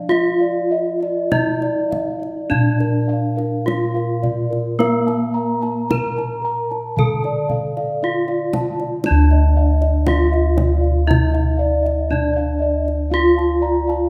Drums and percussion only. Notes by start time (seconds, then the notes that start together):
0.11 kendang high
1.02 kendang slap
1.32 kendang high, kendang low
1.62 kendang slap
1.92 kendang high, kendang low
2.23 kendang slap
2.51 kendang low
2.80 kendang slap
3.39 kendang slap
3.68 kendang high
3.97 kendang slap
4.24 kendang low
4.53 kendang slap
4.80 kendang high
5.08 kendang slap
5.63 kendang slap
5.91 kendang high, kendang low
6.19 kendang slap
6.71 kendang slap
6.98 kendang low
7.24 kendang slap
7.50 kendang low
7.77 kendang slap
8.28 kendang slap
8.53 kendang high, kendang low
8.80 kendang slap
9.04 kendang high
9.31 kendang slap
9.82 kendang slap
10.07 kendang high, kendang low
10.34 kendang slap
10.58 kendang high, kendang low
10.84 kendang slap
11.11 kendang high, kendang low
11.35 kendang slap
11.86 kendang slap
12.12 kendang low
12.38 kendang slap
12.88 kendang slap
13.39 kendang slap
13.90 kendang slap